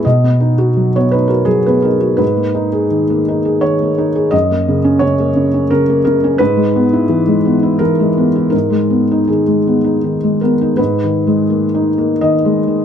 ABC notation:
X:1
M:3/4
L:1/16
Q:1/4=84
K:G#m
V:1 name="Felt piano"
d4- d c B A G B A2 | B8 c4 | d4 c4 A2 A2 | B8 A4 |
A4 G6 A2 | B8 d4 |]
V:2 name="Felt piano"
B,, B, D F F, B, D F F, B, D F | G,, A, D G D, A, D G D, A, D G | F,, A, C, C C, A, C, C C, A, C, C | G,, G, B, E E, G, B, E E, G, B, E |
G,, G, B, D D, G, B, D D, G, B, D | (3G,,2 D,2 G,2 (3A,2 D2 A,2 (3D,2 G,2 D,2 |]